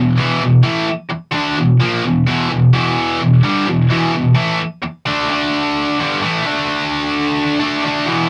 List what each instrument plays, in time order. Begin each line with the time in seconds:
Already playing: distorted electric guitar E2 B2
0.18 distorted electric guitar E2 B2 E3
0.42 distorted electric guitar E2 B2
0.63 distorted electric guitar A2 E3 A3
0.87 muted distorted electric guitar stroke
1.10 muted distorted electric guitar stroke
1.32 distorted electric guitar D3 A3 D4
1.57 distorted electric guitar E2 B2
1.80 distorted electric guitar A#2 F3 A#3
2.04 distorted electric guitar E2 B2
2.27 distorted electric guitar E2 B2 E3
2.50 distorted electric guitar E2 B2
2.73 distorted electric guitar E2 B2 E3
3.19 distorted electric guitar E2 B2
3.43 distorted electric guitar G2 D3 G3
3.67 distorted electric guitar E2 B2
3.90 distorted electric guitar E2 B2 E3
4.13 distorted electric guitar E2 B2
4.35 distorted electric guitar A2 E3 A3
4.60 muted distorted electric guitar stroke
4.83 muted distorted electric guitar stroke
5.06 distorted electric guitar D3 A3 D4
5.29 distorted electric guitar D3 A3 D4
5.98 distorted electric guitar G2 D3 G3
6.22 distorted electric guitar A2 E3 A3
6.44 distorted electric guitar D3 A3 D4
7.60 distorted electric guitar D3 A3 D4
7.83 distorted electric guitar D3 A3 D4
8.06 distorted electric guitar E2 B2 E3